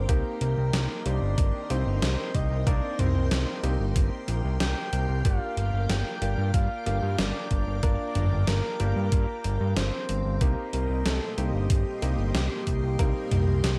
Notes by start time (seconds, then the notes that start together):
Already playing: A#4 C5 G5
0.09 C2 A#3 C4 D#4 G4 A#4 C6, kick, closed hi-hat
0.41 C2 A#4, closed hi-hat
0.57 C2
0.73 C2, snare, closed hi-hat
1.06 C2 A#3 C4 D#4 G4 D5, closed hi-hat
1.22 G1
1.38 G1, kick, closed hi-hat
1.70 C2 A#3 C4 D#4 G4 C5, closed hi-hat
1.86 G1
2.02 C2, snare, closed hi-hat
2.35 C2 D#5, kick, closed hi-hat
2.51 C2
2.67 C2 A#3 C4 D#4 A#4 D5, kick, closed hi-hat
2.99 C2 C5, closed hi-hat, mid tom
3.15 C2
3.31 C2, snare, closed hi-hat
3.63 C2 A#3 C4 D#4 G4, closed hi-hat
3.79 G1
3.96 G1, kick, closed hi-hat
4.28 A#1, closed hi-hat
4.44 C2
4.60 C2 G5, snare, closed hi-hat
4.93 C2, closed hi-hat
5.09 C2
5.25 G1 A#3 D4 F4 G4 F5 D6, kick, closed hi-hat
5.57 G1, closed hi-hat
5.73 G1
5.89 G1 G5, snare, closed hi-hat
6.22 G1 A#3 D4 F4 G4, closed hi-hat
6.38 G2
6.54 G2 F5, kick, closed hi-hat
6.86 G1 A#3 D4 F4 G4, closed hi-hat
7.02 G2
7.18 G1 D5, snare, closed hi-hat
7.51 G1, kick, closed hi-hat
7.67 G1
7.83 G1 A#3 D4 F4 A#4 D5, kick, closed hi-hat
8.15 G1, closed hi-hat, mid tom
8.31 G1
8.47 G1 A#4, snare, closed hi-hat
8.80 G1 A#3 D4 F4 G4, closed hi-hat
8.96 G2
9.12 G2, kick, closed hi-hat
9.44 G1, closed hi-hat
9.61 G2
9.77 G1 C5, snare, closed hi-hat
10.09 G1, closed hi-hat
10.25 G1
10.41 C2 A#3 C4 D#4 G4 A#4 D#5 G5 C6, kick, closed hi-hat
10.73 C2 A#4, closed hi-hat
10.89 C2
11.05 C2 A4, snare, closed hi-hat
11.38 C2 A#3 C4 D#4 G4, closed hi-hat
11.54 G1
11.70 G1, kick, closed hi-hat
12.02 C2 A#3 C4 D#4 G4, closed hi-hat
12.18 G1
12.35 C2, snare, closed hi-hat
12.67 C2, kick, closed hi-hat
12.83 C2
12.99 C2 A#3 C4 D#4 A#4, kick, closed hi-hat
13.31 C2, closed hi-hat, mid tom
13.47 C2
13.63 C2, snare, closed hi-hat